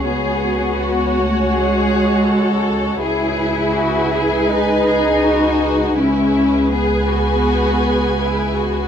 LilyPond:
<<
  \new Staff \with { instrumentName = "Violin section" } { \time 4/4 \key cis \minor \tempo 4 = 81 fis''1 | gis''1 | gis''1 | }
  \new Staff \with { instrumentName = "Ambient pad" } { \time 4/4 \key cis \minor <fis' cis'' gis''>1 | <gis' b' gis''>1 | <gis' b' gis''>1 | }
  \new Staff \with { instrumentName = "Viola section" } { \time 4/4 \key cis \minor <fis' cis''>1 | <gis' b'>1 | <gis' b'>1 | }
  \new Staff \with { instrumentName = "Violin section" } { \time 4/4 \key cis \minor gis'4 fis'4 gis'4 a'4 | gis'4 fis'8 gis'8 b'8 gis'8 fis'4 | e'4 gis'8 fis'4. e'8 fis'8 | }
  \new Staff \with { instrumentName = "Cello section" } { \time 4/4 \key cis \minor b4. a8 gis2 | e'2 dis'2 | cis'4 b2~ b8 r8 | }
  \new Staff \with { instrumentName = "Double bass section" } { \clef bass \time 4/4 \key cis \minor cis,1 | cis,1 | cis,1 | }
>>